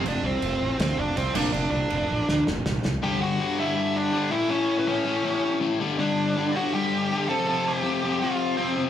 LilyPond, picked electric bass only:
\new Staff \with { instrumentName = "Picked electric bass" } { \clef bass \time 4/4 \key g \lydian \tempo 4 = 162 f,,8 c,8 f,,8 a,,8 d,8 f,,8 c,8 f,,8 | f,,8 c,8 f,,8 a,,8 d,8 f,,8 c,8 c,8 | r1 | r1 |
r1 | r1 | }